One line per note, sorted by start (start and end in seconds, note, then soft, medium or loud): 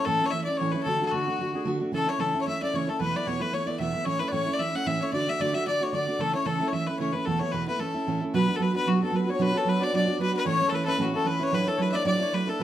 0.05 0.21 A2 medium
0.05 0.21 E3 medium
0.05 0.22 A3 medium
0.05 0.21 C#4 medium
0.05 0.20 E4 medium
0.05 0.27 A4 medium
0.05 0.28 A4 medium
0.21 0.32 A3 soft
0.21 0.33 C#4 soft
0.21 0.34 E4 medium
0.26 0.32 C#5 loud
0.26 0.33 C#5 medium
0.31 0.47 E3 medium
0.31 0.48 A3 medium
0.31 0.48 C#4 medium
0.31 0.43 E5 medium
0.31 0.49 E5 medium
0.35 0.46 E4 medium
0.44 0.60 E4 medium
0.44 0.58 D5 medium
0.44 0.60 D5 medium
0.49 0.60 A3 soft
0.49 0.60 C#4 soft
0.57 0.74 A2 medium
0.57 0.75 E3 medium
0.57 0.73 C#5 medium
0.57 0.87 C#5 medium
0.61 0.75 A3 medium
0.61 0.74 C#4 medium
0.61 0.73 E4 medium
0.71 0.87 C#4 soft
0.71 0.86 E4 soft
0.71 0.83 B4 medium
0.77 0.85 A3 soft
0.83 1.01 D3 medium
0.83 1.01 A3 medium
0.83 1.04 A4 medium
0.83 1.06 A4 medium
0.88 1.00 D4 medium
0.88 0.99 F#4 medium
1.00 1.12 A3 medium
1.00 1.12 D4 soft
1.00 1.13 F#4 medium
1.05 1.12 A4 medium
1.05 1.14 A4 medium
1.11 1.27 D3 medium
1.11 1.28 A3 medium
1.11 1.26 D4 medium
1.11 1.65 F#4 medium
1.11 1.51 F#4 medium
1.11 1.24 F#4 medium
1.26 1.38 A3 soft
1.26 1.39 D4 medium
1.26 1.39 F#4 medium
1.38 1.53 D3 soft
1.38 1.54 A3 soft
1.38 1.54 D4 medium
1.38 1.52 F#4 medium
1.54 1.64 A3 soft
1.54 1.65 D4 medium
1.54 1.66 F#4 medium
1.54 1.66 G#4 medium
1.65 1.80 D3 medium
1.65 1.80 A3 medium
1.65 1.80 D4 medium
1.65 1.79 F#4 loud
1.80 1.92 A3 medium
1.80 1.93 D4 medium
1.80 1.92 F#4 medium
1.92 2.07 C#3 medium
1.92 2.07 E3 medium
1.92 2.07 A3 medium
1.92 2.07 C#4 medium
1.92 2.05 E4 medium
1.92 2.08 A4 medium
1.92 2.11 A4 loud
2.07 2.19 A3 soft
2.07 2.19 C#4 soft
2.07 2.19 E4 medium
2.07 2.19 C#5 medium
2.07 2.22 C#5 medium
2.19 2.33 C#3 medium
2.19 2.34 E3 medium
2.19 2.34 A3 medium
2.19 2.34 C#4 medium
2.19 2.33 E4 medium
2.19 2.41 A4 medium
2.19 2.40 A4 medium
2.34 2.46 A3 soft
2.34 2.47 C#4 soft
2.34 2.46 E4 medium
2.40 2.46 C#5 medium
2.46 2.60 E3 medium
2.46 2.61 A3 medium
2.46 2.61 C#4 medium
2.46 2.60 E4 medium
2.46 2.60 E5 medium
2.46 2.62 E5 medium
2.61 2.73 A3 soft
2.61 2.74 C#4 soft
2.61 2.73 E4 medium
2.61 2.74 D5 medium
2.61 2.77 D5 medium
2.73 2.88 C#3 medium
2.73 2.88 E3 medium
2.73 2.88 A3 medium
2.73 2.88 C#4 medium
2.73 2.86 E4 medium
2.73 2.88 C#5 medium
2.73 2.90 C#5 medium
2.87 3.00 A3 soft
2.87 3.00 C#4 soft
2.87 3.00 E4 soft
2.87 3.00 A4 medium
2.99 3.14 E2 medium
2.99 3.14 B2 medium
2.99 3.14 E3 medium
2.99 3.14 A3 medium
2.99 3.14 B3 medium
2.99 3.13 E4 medium
2.99 3.27 B4 medium
2.99 3.18 B4 medium
3.14 3.26 E3 soft
3.14 3.26 A3 soft
3.14 3.27 B3 soft
3.14 3.26 E4 medium
3.14 3.29 D5 medium
3.26 3.40 E2 medium
3.26 3.41 B2 medium
3.26 3.41 E3 medium
3.26 3.40 A3 medium
3.26 3.40 B3 medium
3.26 3.39 E4 medium
3.26 3.40 C#5 medium
3.26 3.43 C#5 loud
3.39 3.51 E3 soft
3.39 3.52 A3 medium
3.39 3.53 B3 medium
3.39 3.52 E4 medium
3.39 3.53 B4 medium
3.39 3.55 B4 loud
3.52 3.67 E3 soft
3.52 3.67 A3 medium
3.52 3.66 B3 medium
3.52 3.65 E4 soft
3.52 3.67 C#5 medium
3.52 3.68 C#5 medium
3.66 3.79 E3 soft
3.66 3.79 A3 soft
3.66 3.79 B3 medium
3.66 3.79 E4 medium
3.66 3.78 D5 medium
3.66 3.79 D5 medium
3.79 3.94 E2 medium
3.79 3.94 B2 medium
3.79 3.94 E3 medium
3.79 3.94 A3 medium
3.79 3.93 B3 medium
3.79 3.92 E4 medium
3.79 4.04 E5 medium
3.79 4.07 E5 medium
3.93 4.04 E3 soft
3.93 4.05 A3 soft
3.93 4.06 B3 soft
3.93 4.06 E4 medium
4.04 4.20 A2 medium
4.04 4.20 E3 medium
4.04 4.21 A3 medium
4.04 4.20 C#4 medium
4.04 4.18 E4 medium
4.04 4.20 C#5 medium
4.04 4.21 C#5 loud
4.19 4.32 A3 soft
4.19 4.32 C#4 soft
4.19 4.32 E4 medium
4.19 4.31 B4 medium
4.19 4.29 B4 medium
4.28 4.46 A2 medium
4.28 4.55 C#5 loud
4.28 4.33 D5 medium
4.32 4.47 E3 medium
4.32 4.47 A3 medium
4.32 4.46 C#4 medium
4.32 4.45 E4 medium
4.32 4.54 C#5 medium
4.46 4.59 A3 soft
4.46 4.60 C#4 medium
4.46 4.59 E4 medium
4.53 4.59 D5 medium
4.53 4.61 D5 medium
4.58 4.74 E3 soft
4.58 4.74 A3 soft
4.58 4.73 C#4 medium
4.58 4.83 E5 medium
4.58 4.77 E5 medium
4.73 4.86 A3 soft
4.73 4.86 C#4 soft
4.73 4.86 E4 soft
4.73 4.88 F#5 medium
4.85 5.00 A2 medium
4.85 5.01 E3 medium
4.85 5.01 A3 medium
4.85 5.00 C#4 medium
4.85 4.99 E4 medium
4.85 5.00 E5 medium
4.85 5.03 E5 loud
5.00 5.12 A3 medium
5.00 5.13 C#4 soft
5.00 5.13 E4 soft
5.00 5.13 C#5 medium
5.00 5.12 C#5 medium
5.13 5.27 D3 medium
5.13 5.27 A3 medium
5.13 5.27 D4 medium
5.13 5.25 F#4 medium
5.13 5.28 D5 medium
5.13 5.31 D5 medium
5.26 5.40 A3 soft
5.26 5.40 D4 soft
5.26 5.39 F#4 soft
5.26 5.40 E5 medium
5.26 5.43 E5 medium
5.39 5.54 D3 medium
5.39 5.54 A3 medium
5.39 5.54 D4 medium
5.39 5.52 F#4 medium
5.39 5.53 D5 medium
5.39 5.56 D5 medium
5.53 5.66 A3 soft
5.53 5.67 D4 medium
5.53 5.66 F#4 medium
5.53 5.65 E5 medium
5.53 5.66 E5 loud
5.66 5.81 D3 soft
5.66 5.81 A3 medium
5.66 5.81 D4 medium
5.66 5.90 D5 medium
5.66 5.84 D5 loud
5.80 5.92 A3 soft
5.80 5.93 D4 soft
5.80 5.93 F#4 medium
5.80 5.96 C#5 medium
5.92 6.07 D3 medium
5.92 6.08 A3 medium
5.92 6.07 D4 medium
5.92 6.06 F#4 medium
5.92 6.17 D5 medium
5.92 6.23 D5 medium
6.07 6.19 A3 soft
6.07 6.20 D4 medium
6.07 6.19 F#4 medium
6.19 6.34 C#3 medium
6.19 6.34 E3 medium
6.19 6.34 A3 medium
6.19 6.33 C#4 medium
6.19 6.32 E4 medium
6.19 6.32 A4 medium
6.19 6.34 A4 loud
6.33 6.45 A3 soft
6.33 6.46 C#4 medium
6.33 6.46 E4 medium
6.33 6.47 C#5 medium
6.33 6.48 C#5 medium
6.46 6.60 C#3 medium
6.46 6.60 E3 medium
6.46 6.61 A3 medium
6.46 6.60 C#4 medium
6.46 6.58 E4 medium
6.46 6.67 A4 medium
6.46 6.69 A4 medium
6.59 6.72 A3 medium
6.59 6.73 C#4 medium
6.59 6.72 E4 medium
6.66 6.72 C#5 medium
6.66 6.75 C#5 medium
6.73 6.87 E3 medium
6.73 6.88 A3 medium
6.73 6.87 C#4 medium
6.73 6.85 E4 medium
6.73 6.86 E5 medium
6.73 6.88 E5 medium
6.87 6.99 A3 soft
6.87 6.99 C#4 soft
6.87 6.99 E4 medium
6.87 6.99 B4 medium
6.99 7.14 C#3 medium
6.99 7.14 E3 medium
6.99 7.14 A3 medium
6.99 7.13 C#4 medium
6.99 7.11 E4 medium
6.99 7.14 C#5 medium
6.99 7.15 C#5 medium
7.13 7.26 A3 soft
7.13 7.27 C#4 medium
7.13 7.26 E4 medium
7.13 7.27 B4 medium
7.25 7.41 E2 medium
7.25 7.41 B2 medium
7.25 7.41 E3 medium
7.25 7.41 A3 medium
7.25 7.41 B3 medium
7.25 7.39 E4 medium
7.25 7.41 A4 medium
7.39 7.52 E3 soft
7.39 7.52 A3 soft
7.39 7.53 B3 medium
7.39 7.53 E4 medium
7.39 7.53 C#5 medium
7.52 7.67 E2 medium
7.52 7.67 B2 medium
7.52 7.68 E3 medium
7.52 7.68 A3 medium
7.52 7.67 B3 medium
7.52 7.66 E4 medium
7.52 7.67 B4 medium
7.52 7.66 B4 medium
7.68 7.78 E3 soft
7.68 7.79 A3 medium
7.68 7.80 B3 soft
7.68 7.80 E4 medium
7.68 7.81 B4 medium
7.68 7.80 B4 medium
7.79 7.94 E3 soft
7.79 7.94 A3 medium
7.79 7.94 C#4 medium
7.79 7.93 E4 medium
7.79 8.21 A4 medium
7.79 8.18 A4 medium
7.94 8.07 A3 soft
7.94 8.07 C#4 soft
7.94 8.06 E4 medium
8.07 8.21 A2 medium
8.07 8.21 E3 medium
8.07 8.22 A3 medium
8.07 8.21 C#4 medium
8.07 8.19 E4 medium
8.21 8.34 A3 medium
8.21 8.34 C#4 medium
8.21 8.33 E4 medium
8.33 8.48 B2 medium
8.33 8.48 F#3 medium
8.33 8.48 B3 medium
8.33 8.48 D4 medium
8.33 8.47 F#4 medium
8.33 8.61 B4 medium
8.33 8.55 B4 medium
8.33 8.57 B4 loud
8.48 8.59 B3 soft
8.48 8.60 D4 soft
8.48 8.60 F#4 soft
8.54 8.60 A4 medium
8.54 9.03 A4 medium
8.54 8.63 A4 medium
8.59 8.74 F#3 medium
8.59 8.74 B3 medium
8.59 8.74 D4 medium
8.59 8.72 F#4 medium
8.59 8.75 B4 medium
8.73 8.86 B3 soft
8.73 8.87 D4 medium
8.73 8.86 F#4 medium
8.73 9.14 B4 medium
8.73 8.87 B4 medium
8.73 8.90 B4 medium
8.86 9.01 B2 medium
8.86 9.01 F#3 medium
8.86 9.01 B3 medium
8.86 9.02 D4 medium
8.86 9.02 F#4 medium
8.86 8.99 F#4 medium
9.00 9.12 B3 soft
9.00 9.12 D4 medium
9.00 9.13 F#4 medium
9.00 9.14 A4 medium
9.00 9.54 A4 medium
9.00 9.17 A4 medium
9.12 9.27 F#3 medium
9.12 9.27 B3 medium
9.12 9.27 D4 medium
9.12 9.25 F#4 medium
9.12 9.40 B4 medium
9.12 9.29 B4 medium
9.16 9.24 B4 medium
9.24 9.39 D4 soft
9.24 9.39 F#4 medium
9.24 9.32 B4 medium
9.29 9.38 B3 soft
9.29 9.41 C#5 medium
9.29 9.88 C#5 medium
9.29 9.44 C#5 medium
9.39 9.54 B2 medium
9.39 9.54 F#3 medium
9.39 9.54 B3 medium
9.39 9.53 D4 medium
9.39 9.52 F#4 medium
9.39 9.66 B4 medium
9.39 9.56 B4 medium
9.39 9.59 B4 loud
9.53 9.65 B3 soft
9.53 9.65 D4 soft
9.53 9.66 F#4 medium
9.53 10.67 A4 medium
9.53 9.68 A4 medium
9.57 9.71 A4 medium
9.65 9.80 F#3 medium
9.65 9.81 B3 medium
9.65 9.80 D4 medium
9.65 9.79 F#4 medium
9.65 10.19 B4 medium
9.65 9.82 B4 medium
9.69 9.85 B4 loud
9.80 9.92 B3 medium
9.80 9.93 D4 medium
9.80 9.93 F#4 medium
9.80 9.91 D5 medium
9.80 9.94 D5 medium
9.80 9.94 D5 loud
9.92 10.07 B2 medium
9.92 10.08 F#3 medium
9.92 10.08 B3 medium
9.92 10.07 D4 medium
9.92 10.06 F#4 medium
9.92 10.18 D5 medium
9.92 10.02 D5 medium
9.92 10.20 D5 medium
10.02 10.10 D5 medium
10.07 10.19 B3 soft
10.07 10.20 D4 medium
10.07 10.20 F#4 medium
10.07 10.50 D5 medium
10.19 10.34 F#3 soft
10.19 10.34 B3 medium
10.19 10.33 D4 medium
10.19 10.31 F#4 medium
10.19 10.32 B4 medium
10.23 10.35 B4 medium
10.33 10.45 B3 soft
10.33 10.46 D4 soft
10.33 10.46 F#4 medium
10.33 10.45 B4 medium
10.37 10.47 B4 loud
10.44 10.60 A2 medium
10.44 10.61 E3 medium
10.44 10.61 A3 medium
10.44 10.59 C#4 medium
10.44 10.57 E4 medium
10.44 11.39 C#5 medium
10.44 10.67 C#5 loud
10.44 10.71 C#5 loud
10.59 10.71 A3 soft
10.59 10.72 C#4 soft
10.59 10.72 E4 medium
10.66 10.73 A4 medium
10.66 11.13 A4 medium
10.66 10.76 A4 medium
10.72 10.87 E3 medium
10.72 10.87 A3 medium
10.72 10.86 C#4 medium
10.72 10.84 E4 medium
10.72 10.85 B4 loud
10.72 10.86 B4 medium
10.72 10.84 B4 medium
10.85 10.97 A3 soft
10.85 10.98 C#4 medium
10.85 10.99 E4 medium
10.85 10.89 A4 medium
10.85 11.00 B4 medium
10.85 11.25 B4 medium
10.85 11.02 B4 loud
10.98 11.13 A2 medium
10.98 11.14 E3 medium
10.98 11.14 A3 medium
10.98 11.13 C#4 medium
10.98 11.11 E4 medium
10.98 12.63 F#4 medium
10.98 11.13 F#4 medium
10.98 11.15 F#4 medium
11.12 11.25 A3 medium
11.12 11.25 C#4 medium
11.12 11.26 E4 medium
11.12 11.66 A4 medium
11.12 11.27 A4 medium
11.12 11.28 A4 medium
11.25 11.40 E3 medium
11.25 11.41 A3 medium
11.25 11.40 C#4 medium
11.25 11.38 E4 medium
11.25 11.51 B4 medium
11.25 11.45 B4 medium
11.39 11.52 A3 soft
11.39 11.52 C#4 medium
11.39 11.52 E4 medium
11.39 11.99 C#5 medium
11.43 11.56 C#5 loud
11.51 11.67 A2 medium
11.51 11.67 F#3 medium
11.51 11.68 A3 medium
11.51 11.66 D4 medium
11.51 11.65 E4 medium
11.51 11.77 B4 medium
11.51 11.66 B4 medium
11.51 11.69 B4 loud
11.66 11.78 A3 soft
11.66 11.80 D4 soft
11.66 11.79 E4 medium
11.66 12.46 A4 medium
11.66 11.83 A4 medium
11.66 11.77 A4 medium
11.76 11.94 F#3 medium
11.76 11.94 A3 medium
11.76 12.31 B4 medium
11.76 11.95 B4 loud
11.76 11.80 C#5 medium
11.81 11.93 D4 medium
11.81 11.91 E4 medium
11.81 11.91 B4 medium
11.91 12.05 D4 medium
11.91 12.05 E4 medium
11.91 12.06 D5 medium
11.91 12.05 D5 medium
11.91 12.06 D5 loud
11.91 11.97 E5 medium
11.95 12.04 A3 soft
12.04 12.20 A2 medium
12.04 12.21 F#3 medium
12.04 12.21 A3 medium
12.04 12.20 D4 medium
12.04 12.18 E4 medium
12.04 12.63 D5 medium
12.04 12.36 D5 loud
12.04 12.22 D5 medium
12.20 12.33 A3 soft
12.20 12.33 D4 medium
12.20 12.33 E4 medium
12.20 12.30 C#5 medium
12.31 12.47 F#3 soft
12.31 12.48 A3 medium
12.31 12.47 D4 medium
12.31 12.59 B4 medium
12.31 12.47 B4 medium
12.31 12.51 B4 medium
12.31 12.34 C#5 medium
12.36 12.46 E4 medium
12.46 12.61 A3 soft
12.46 12.60 D4 soft
12.46 12.60 E4 medium
12.46 12.63 A4 medium
12.46 12.61 A4 medium
12.46 12.63 A4 medium
12.59 12.63 B2 medium
12.59 12.63 F#3 medium
12.59 12.63 B4 medium